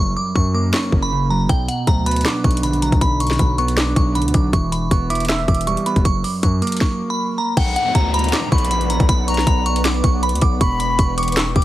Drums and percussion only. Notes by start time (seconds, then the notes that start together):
0.35 kick
0.73 snare, clap
0.92 kick
1.49 kick, closed hi-hat
1.69 closed hi-hat
1.87 kick, closed hi-hat
2.06 closed hi-hat
2.11 closed hi-hat
2.16 closed hi-hat
2.21 closed hi-hat
2.25 snare, clap, closed hi-hat
2.44 kick, closed hi-hat
2.51 closed hi-hat
2.57 closed hi-hat
2.63 closed hi-hat
2.73 closed hi-hat
2.82 closed hi-hat
2.92 kick, closed hi-hat
3.01 kick, closed hi-hat
3.20 closed hi-hat
3.27 snare, closed hi-hat
3.33 closed hi-hat
3.39 kick, closed hi-hat
3.58 closed hi-hat
3.68 closed hi-hat
3.77 snare, clap, closed hi-hat
3.96 kick, closed hi-hat
4.15 closed hi-hat
4.22 closed hi-hat
4.28 closed hi-hat
4.34 kick, closed hi-hat
4.53 kick, closed hi-hat
4.72 closed hi-hat
4.91 kick, closed hi-hat
5.10 closed hi-hat
5.15 closed hi-hat
5.20 closed hi-hat
5.25 closed hi-hat
5.29 snare, clap, closed hi-hat
5.48 kick, closed hi-hat
5.54 closed hi-hat
5.61 closed hi-hat
5.67 closed hi-hat
5.77 closed hi-hat
5.86 closed hi-hat
5.96 kick, closed hi-hat
6.05 kick, closed hi-hat
6.24 open hi-hat
6.43 kick, closed hi-hat
6.62 closed hi-hat
6.67 closed hi-hat
6.72 closed hi-hat
6.77 closed hi-hat
6.81 kick, snare
7.57 kick, closed hi-hat, crash
7.76 closed hi-hat
7.95 kick, closed hi-hat
8.14 closed hi-hat
8.19 closed hi-hat
8.24 closed hi-hat
8.29 closed hi-hat
8.33 snare, clap, closed hi-hat
8.52 kick, closed hi-hat
8.58 closed hi-hat
8.65 closed hi-hat
8.71 closed hi-hat
8.81 closed hi-hat
8.90 closed hi-hat
9.00 kick, closed hi-hat
9.09 kick, closed hi-hat
9.28 closed hi-hat
9.34 snare, closed hi-hat
9.41 closed hi-hat
9.47 kick, closed hi-hat
9.66 closed hi-hat
9.76 closed hi-hat
9.85 snare, clap, closed hi-hat
10.04 kick, closed hi-hat
10.23 closed hi-hat
10.29 closed hi-hat
10.35 closed hi-hat
10.41 kick, closed hi-hat
10.61 kick, closed hi-hat
10.80 closed hi-hat
10.99 kick, closed hi-hat
11.18 closed hi-hat
11.23 closed hi-hat
11.28 closed hi-hat
11.32 closed hi-hat
11.37 snare, clap, closed hi-hat
11.56 kick, closed hi-hat